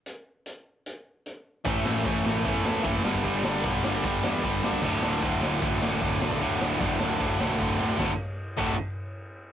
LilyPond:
<<
  \new Staff \with { instrumentName = "Distorted electric guitar" } { \clef bass \time 4/4 \key d \major \tempo 4 = 152 r1 | <a, e a cis' e' a'>2 <a, e a cis' e' a'>4. <g, d g b d' g'>8~ | <g, d g b d' g'>4. <g, d g b d' g'>2 r8 | <d, a, d a fis'>2 <d, a, d a fis'>2 |
<d, a, d a fis'>2 <d, a, d a fis'>2 | <d, a, d a fis'>8 r4 <d, a, d a fis'>8 r2 | }
  \new Staff \with { instrumentName = "Distorted electric guitar" } { \clef bass \time 4/4 \key d \major r1 | <a, e a>8 <a, e a>8 <a, e a>8 <a, e a>8 <a, e a>8 <a, e a>8 <a, e a>8 <g, d g>8 | <g, d g>8 <g, d g>8 <g, d g>8 <g, d g>8 <g, d g>8 <g, d g>8 <g, d g>8 <g, d g>8 | <d, a, d>8 <d, a, d>8 <d, a, d>8 <d, a, d>8 <d, a, d>8 <d, a, d>8 <d, a, d>8 <d, a, d>8 |
<d, a, d>8 <d, a, d>8 <d, a, d>8 <d, a, d>8 <d, a, d>8 <d, a, d>8 <d, a, d>8 <d, a, d>8 | <d, a, d a fis'>8 r4 <d, a, d a fis'>8 r2 | }
  \new Staff \with { instrumentName = "Distorted electric guitar" } { \clef bass \time 4/4 \key d \major r1 | <a, e a>8 <a, e a>8 <a, e a>8 <a, e a>8 <a, e a>8 <a, e a>8 <a, e a>8 <g, d g>8 | <g, d g>8 <g, d g>8 <g, d g>8 <g, d g>8 <g, d g>8 <g, d g>8 <g, d g>8 <g, d g>8 | <d, a, d>8 <d, a, d>8 <d, a, d>8 <d, a, d>8 <d, a, d>8 <d, a, d>8 <d, a, d>8 <d, a, d>8 |
<d, a, d>8 <d, a, d>8 <d, a, d>8 <d, a, d>8 <d, a, d>8 <d, a, d>8 <d, a, d>8 <d, a, d>8 | <d, a, d>8 r4 <d, a, d>8 r2 | }
  \new Staff \with { instrumentName = "Picked electric bass" } { \clef bass \time 4/4 \key d \major r1 | a,,8 a,,8 a,,8 a,,8 e,4 fis,,8 g,,8 | g,,8 g,,8 b,,8 g,,8 g,,8 e,8 g,,8 g,,8 | d,,8 d,,8 d,,8 d,,8 a,,4 d,,8 b,,8 |
d,,8 d,,8 fis,,8 d,,8 d,,8 b,,8 d,,8 d,,8 | d,,8 r4 d,,8 r2 | }
  \new DrumStaff \with { instrumentName = "Drums" } \drummode { \time 4/4 hh4 hh4 hh4 hh4 | <bd cymr>8 sn8 <bd cymr>8 sn8 <bd cymr>8 sn8 <bd cymr>8 sn16 bd16 | <bd cymr>8 sn8 <bd cymr>8 sn8 <bd cymr>8 sn8 <bd cymr>8 sn16 bd16 | <cymc bd>8 sn8 <bd cymr>8 sn8 <bd cymr>8 sn8 <bd cymr>8 sn16 bd16 |
<bd cymr>8 sn8 <bd cymr>8 sn8 <bd cymr>8 sn8 <bd cymr>8 sn8 | <bd sn>4 r8 <cymc bd>8 r4 r4 | }
>>